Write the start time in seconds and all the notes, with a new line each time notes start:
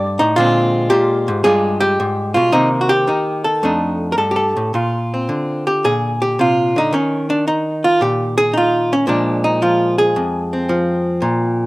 Already playing: G2 A3 G4 D5
0.19 A2 D#4
0.36 A#2 D3 G#3 C4 F4
0.90 A#2 G4
1.28 G#2
1.44 G2 G3 G#3 F4 G#4
1.80 G4
2.00 G#2
2.34 B2 F4
2.52 C3 D#3 A#3 D#4
2.81 F#4
2.89 G4
3.07 D#3 D#4
3.44 A4
3.63 F2 A3 D4 D#4
4.12 A#4
4.18 G2 A4
4.31 G4
4.36 A4
4.56 A2
4.74 A#2 F4
5.14 C4
5.29 D3
5.67 G4
5.84 A#2 G#4
6.22 G4
6.39 C3 F4
6.76 D3 D#4
6.93 D#3 C#4
7.30 D4
7.48 D#4
7.84 F4
8.01 A#2 G4
8.38 G#4
8.54 D#4 F4
8.93 C#4
9.07 A#2 F3 G#3 D4
9.44 D#4
9.62 F3 F4
9.98 G#4
10.16 F2
10.53 C4
10.69 F3
11.22 A#2